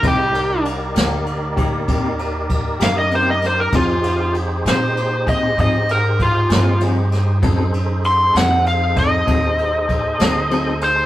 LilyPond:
<<
  \new Staff \with { instrumentName = "Electric slide guitar" } { \time 12/8 \key c \minor \tempo 4. = 65 g'4 r2. r8 f''16 ees''16 c''16 ees''16 c''16 bes'16 | f'4 r8 c''4 ees''8 ees''8 bes'8 f'4 r4 | r4 c'''8 fis''8 f''8 dis''2. c''8 | }
  \new Staff \with { instrumentName = "Tonewheel organ" } { \time 12/8 \key c \minor <aes e' b' ees''>8 <ees' g' bes' d''>1~ <ees' g' bes' d''>4. | <ees' g' aes' c''>1. | <dis' aes' a' c''>1. | }
  \new Staff \with { instrumentName = "Clean electric guitar" } { \time 12/8 \key c \minor <c bes ees' g'>8 r4 <bes ees' g'>8 r8 <bes ees' g'>8 <c bes ees' g'>8 r4 <bes ees' g'>8 <c bes ees' g'>8 r8 | <f c' ees' aes'>8 r4 <c' ees' aes'>8 r8 <c' ees' aes'>8 <f c' ees' aes'>8 r4 <c' ees' aes'>8 <f c' ees' aes'>8 r8 | <fis c' dis' a'>8 r4 <c' dis' a'>8 r8 <c' dis' a'>8 <fis c' dis' a'>8 r4 <c' dis' a'>8 <fis c' dis' a'>8 r8 | }
  \new Staff \with { instrumentName = "Upright bass" } { \clef bass \time 12/8 \key c \minor c,4. d,4. ees,4. fis,4. | f,4. bes,4. aes,4. g,4. | fis,4. f,4. dis,4. d,4. | }
  \new DrumStaff \with { instrumentName = "Drums" } \drummode { \time 12/8 <bd cymr>8 cymr8 cymr8 <cymr sn>8 cymr8 <bd cymr>8 <bd cymr>8 cymr8 <bd cymr>8 <cymr sn>8 cymr8 <cymr sn>8 | <bd cymr>8 cymr8 cymr8 <cymr sn>8 cymr8 <bd cymr>8 <bd cymr>8 cymr8 <bd cymr>8 <cymr sn>8 cymr8 <cymr sn>8 | <bd cymr>8 cymr8 cymr8 <cymr sn>8 cymr8 <bd cymr>8 <bd cymr>8 cymr8 <bd cymr>8 <cymr sn>8 cymr8 <cymr sn>8 | }
>>